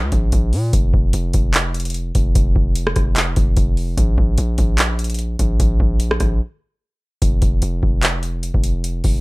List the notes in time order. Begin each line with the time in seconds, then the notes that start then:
0.03 D2
0.12 A#1, kick, closed hi-hat
0.32 A#1, kick, closed hi-hat
0.53 A#2, open hi-hat
0.73 F1, kick, closed hi-hat
0.94 F1, kick
1.13 F1, closed hi-hat
1.33 F1, kick, closed hi-hat
1.54 clap, closed hi-hat
1.74 closed hi-hat
1.80 closed hi-hat
1.85 closed hi-hat
1.90 closed hi-hat
1.94 closed hi-hat
2.15 F1, kick, closed hi-hat
2.35 F1, kick, closed hi-hat
2.56 F1, kick
2.75 closed hi-hat
2.87 cross-stick
2.96 F1, kick, cross-stick, closed hi-hat
3.16 clap, closed hi-hat
3.36 F1, kick, closed hi-hat
3.57 F1, kick, closed hi-hat
3.77 open hi-hat
3.98 A#1, kick, closed hi-hat
4.18 A#1, kick
4.38 A#1, closed hi-hat
4.58 A#1, kick, closed hi-hat
4.78 clap, closed hi-hat
4.99 closed hi-hat
5.04 closed hi-hat
5.10 closed hi-hat
5.14 closed hi-hat
5.19 closed hi-hat
5.39 A#1, kick, closed hi-hat
5.60 A#1, kick, closed hi-hat
5.80 A#1, kick
6.00 closed hi-hat
6.11 cross-stick
6.20 A#1, kick, cross-stick, closed hi-hat
7.22 F1, kick, closed hi-hat
7.42 F1, kick, closed hi-hat
7.62 F1, closed hi-hat
7.83 F1, kick
8.03 clap, closed hi-hat
8.23 closed hi-hat
8.43 closed hi-hat
8.54 F1, kick
8.64 closed hi-hat
8.84 closed hi-hat
9.04 F1, kick, open hi-hat